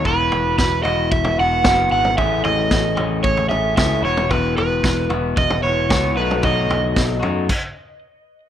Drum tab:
CC |----------------|----------------|----------------|--------x-------|
SD |----o-------o---|----o-------o---|----o-------o---|----o-----------|
T2 |---------o--o--o|----------o----o|---------o--o--o|----------------|
FT |o-o---o--o--o---|o-o---o--o--o---|o-o---o--o--o---|o-o---o---------|
BD |o---o---o---o---|o---o---o---o---|o---o---o---o---|o---o---o-------|